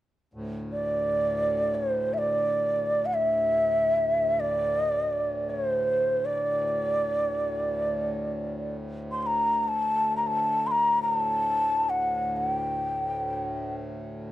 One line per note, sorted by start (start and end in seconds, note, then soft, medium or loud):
0.33 14.32 D2 soft
0.33 14.32 A2 medium
0.72 1.76 D5 medium
1.75 2.15 C5 medium
2.13 2.19 E5 medium
2.18 3.07 D5 medium
3.06 3.15 F#5 medium
3.14 4.41 E5 medium
4.40 5.51 D5 medium
5.50 5.70 C#5 medium
5.70 6.27 C5 medium
6.25 8.76 D5 medium
9.12 9.23 C6 medium
9.23 9.64 A#5 medium
9.23 9.27 C6 medium
9.64 10.16 A5 medium
9.64 9.69 A#5 medium
10.17 10.28 A#5 medium
10.27 10.68 A5 medium
10.67 10.72 C6 medium
10.71 11.02 A#5 medium
11.02 11.16 A#5 medium
11.16 11.91 A5 medium
11.89 12.36 F#5 medium
12.36 12.50 F#5 medium
12.50 13.76 G5 medium